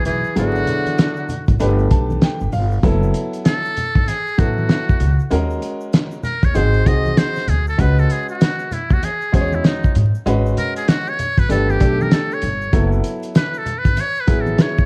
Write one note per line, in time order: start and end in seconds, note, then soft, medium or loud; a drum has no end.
0.05 0.22 B1 medium
0.05 0.34 E3 medium
0.05 0.34 G#4 medium
0.05 closed hi-hat medium
0.05 low conga medium
0.05 shaker soft
0.24 shaker soft
0.36 0.63 G#1 medium
0.36 1.56 D3 medium
0.36 1.22 F#3 medium
0.36 1.22 B3 medium
0.36 1.22 E4 medium
0.36 1.57 F#4 loud
0.36 1.23 G#4 medium
0.36 closed hi-hat medium
0.36 shaker medium
0.55 shaker soft
0.67 closed hi-hat medium
0.67 low conga medium
0.67 shaker soft
0.86 closed hi-hat soft
0.86 high conga soft
0.86 shaker soft
0.98 snare loud
0.98 closed hi-hat medium
0.98 shaker medium
1.16 shaker soft
1.29 closed hi-hat medium
1.29 low conga medium
1.29 shaker soft
1.48 1.58 G#1 medium
1.48 kick medium
1.48 closed hi-hat soft
1.48 shaker soft
1.60 1.86 G1 medium
1.60 2.46 A3 medium
1.60 2.46 D4 medium
1.60 2.46 G4 medium
1.60 2.46 B4 medium
1.60 closed hi-hat medium
1.60 shaker medium
1.79 shaker soft
1.91 2.17 B1 medium
1.91 2.20 A5 medium
1.91 kick medium
1.91 closed hi-hat medium
1.91 shaker soft
2.10 high conga medium
2.10 shaker soft
2.22 2.51 G5 medium
2.22 snare loud
2.22 closed hi-hat medium
2.22 shaker medium
2.41 2.51 G1 medium
2.41 shaker soft
2.52 2.79 G1 medium
2.52 2.82 F5 medium
2.52 open hi-hat soft
2.52 low conga medium
2.52 shaker soft
2.72 shaker soft
2.83 3.10 F#1 medium
2.83 3.69 F#3 medium
2.83 3.70 B3 medium
2.83 3.70 E4 medium
2.83 3.70 A4 loud
2.83 kick loud
2.83 closed hi-hat medium
2.83 shaker medium
3.03 shaker soft
3.14 closed hi-hat medium
3.14 shaker soft
3.33 closed hi-hat soft
3.33 shaker soft
3.45 4.09 A4 loud
3.45 snare loud
3.45 closed hi-hat medium
3.45 shaker medium
3.65 shaker soft
3.77 closed hi-hat medium
3.77 low conga medium
3.77 shaker soft
3.95 4.06 G#1 medium
3.95 kick medium
3.95 shaker soft
4.08 4.40 G#4 medium
4.08 closed hi-hat medium
4.08 high conga soft
4.08 shaker medium
4.27 shaker soft
4.38 4.65 A1 medium
4.38 5.01 F#3 medium
4.38 5.01 B3 medium
4.38 5.02 E4 medium
4.38 5.31 F#4 medium
4.38 5.02 A4 medium
4.38 kick loud
4.38 closed hi-hat medium
4.38 shaker soft
4.58 high conga medium
4.58 shaker soft
4.69 snare loud
4.69 closed hi-hat medium
4.69 shaker medium
4.89 kick medium
4.89 shaker soft
5.00 5.17 C#2 medium
5.00 closed hi-hat medium
5.00 low conga medium
5.00 shaker soft
5.19 shaker medium
5.30 5.57 D#2 loud
5.30 6.17 G#3 medium
5.30 6.17 C#4 medium
5.30 6.17 F#4 medium
5.30 6.17 A#4 medium
5.30 closed hi-hat medium
5.30 shaker medium
5.50 shaker soft
5.62 closed hi-hat medium
5.62 shaker soft
5.81 shaker soft
5.93 snare loud
5.93 closed hi-hat loud
5.93 shaker medium
6.11 shaker soft
6.23 6.46 A#4 medium
6.23 closed hi-hat medium
6.23 low conga medium
6.23 shaker soft
6.43 6.56 D#2 medium
6.43 6.58 C#5 medium
6.43 kick medium
6.43 closed hi-hat soft
6.43 shaker soft
6.54 6.81 G#1 medium
6.54 6.81 C4 medium
6.54 6.81 D#4 medium
6.54 6.81 F#4 medium
6.54 6.82 G#4 medium
6.54 6.88 C5 loud
6.54 closed hi-hat medium
6.54 high conga soft
6.54 shaker medium
6.74 shaker soft
6.85 7.12 C2 medium
6.85 7.49 C4 medium
6.85 7.49 D#4 medium
6.85 7.49 F#4 medium
6.85 7.50 G#4 medium
6.85 7.19 D#5 medium
6.85 kick medium
6.85 closed hi-hat medium
6.85 shaker soft
7.05 high conga medium
7.05 shaker soft
7.17 7.51 C5 loud
7.17 snare loud
7.17 closed hi-hat medium
7.17 shaker medium
7.36 snare soft
7.36 shaker soft
7.48 7.74 D2 medium
7.48 7.68 G#4 medium
7.48 closed hi-hat medium
7.48 low conga medium
7.48 shaker soft
7.67 7.82 A4 medium
7.67 shaker soft
7.78 8.05 C#2 loud
7.78 8.64 G#3 medium
7.78 8.65 C#4 medium
7.78 8.65 F#4 medium
7.78 8.65 B4 medium
7.78 8.01 B4 medium
7.78 kick loud
7.78 closed hi-hat medium
7.78 shaker medium
7.98 8.13 A4 medium
7.98 shaker soft
8.10 8.29 G#4 medium
8.10 closed hi-hat medium
8.10 shaker soft
8.29 8.74 F#4 medium
8.29 shaker soft
8.41 snare loud
8.41 closed hi-hat loud
8.41 shaker medium
8.59 shaker soft
8.71 8.95 E4 medium
8.71 closed hi-hat medium
8.71 low conga medium
8.71 shaker soft
8.90 9.01 D#2 medium
8.90 9.06 F#4 medium
8.90 kick medium
8.90 shaker soft
9.03 9.34 G#4 medium
9.03 closed hi-hat medium
9.03 high conga soft
9.03 shaker medium
9.22 shaker soft
9.33 9.60 E2 medium
9.33 9.96 G#3 medium
9.33 9.96 C#4 medium
9.33 9.96 F#4 medium
9.33 9.56 G#4 medium
9.33 9.42 C5 medium
9.33 kick medium
9.33 closed hi-hat medium
9.33 shaker soft
9.40 10.00 C#5 medium
9.53 9.68 E4 medium
9.53 high conga medium
9.53 shaker soft
9.65 9.96 D#4 medium
9.65 snare loud
9.65 closed hi-hat medium
9.65 shaker medium
9.84 kick medium
9.84 shaker soft
9.95 10.12 G#2 medium
9.95 closed hi-hat medium
9.95 low conga medium
9.95 shaker soft
10.15 shaker soft
10.26 10.52 G#1 loud
10.26 11.12 G#3 medium
10.26 11.12 C#4 medium
10.26 11.12 F#4 medium
10.26 11.13 B4 loud
10.26 closed hi-hat medium
10.26 shaker medium
10.46 shaker soft
10.57 10.76 A#4 loud
10.57 closed hi-hat medium
10.57 low conga medium
10.57 shaker soft
10.76 10.90 G#4 medium
10.76 closed hi-hat soft
10.76 shaker soft
10.88 11.10 F#4 medium
10.88 snare loud
10.88 closed hi-hat medium
10.88 shaker medium
11.07 11.41 C#5 loud
11.07 shaker soft
11.19 closed hi-hat medium
11.19 low conga medium
11.19 shaker soft
11.38 11.48 G#1 medium
11.38 11.50 B4 medium
11.38 kick medium
11.38 closed hi-hat soft
11.38 shaker soft
11.49 11.76 G1 medium
11.49 11.76 A3 medium
11.49 11.76 D4 medium
11.49 11.76 G4 medium
11.49 11.72 A4 medium
11.49 11.76 B4 medium
11.49 closed hi-hat medium
11.49 high conga soft
11.49 shaker medium
11.70 12.03 G4 medium
11.70 high conga medium
11.70 shaker soft
11.79 12.07 B1 medium
11.79 12.43 A3 medium
11.79 12.43 D4 medium
11.79 12.44 G4 medium
11.79 12.44 A4 medium
11.79 kick medium
11.79 closed hi-hat medium
11.79 shaker soft
12.01 12.15 A#4 medium
12.01 high conga medium
12.01 shaker soft
12.11 12.35 A4 medium
12.11 snare loud
12.11 closed hi-hat medium
12.11 shaker medium
12.31 12.94 C#5 medium
12.31 shaker soft
12.42 12.69 G1 medium
12.42 closed hi-hat medium
12.42 low conga medium
12.42 shaker soft
12.61 shaker soft
12.73 13.00 F#1 loud
12.73 13.59 F#3 medium
12.73 13.59 B3 medium
12.73 13.59 E4 medium
12.73 13.60 A4 medium
12.73 kick loud
12.73 closed hi-hat medium
12.73 shaker medium
12.92 shaker soft
13.04 closed hi-hat medium
13.04 shaker soft
13.23 closed hi-hat soft
13.23 shaker medium
13.35 13.59 B4 medium
13.35 snare loud
13.35 closed hi-hat medium
13.35 shaker medium
13.54 shaker soft
13.58 13.80 A4 medium
13.66 closed hi-hat medium
13.66 low conga medium
13.66 shaker soft
13.78 14.02 B4 medium
13.84 13.95 G#1 medium
13.84 kick medium
13.84 closed hi-hat soft
13.84 shaker soft
13.97 14.22 C#5 loud
13.97 closed hi-hat medium
13.97 high conga soft
13.97 shaker medium
14.16 shaker soft
14.20 14.43 B4 medium
14.27 14.54 A1 medium
14.27 14.86 F#3 medium
14.27 14.86 B3 medium
14.27 14.86 E4 medium
14.27 14.86 G#4 medium
14.27 kick medium
14.27 closed hi-hat medium
14.27 shaker soft
14.41 14.63 A4 medium
14.47 high conga medium
14.47 shaker soft
14.59 14.86 C#5 medium
14.59 snare loud
14.59 closed hi-hat medium
14.59 shaker medium
14.78 kick medium
14.78 shaker soft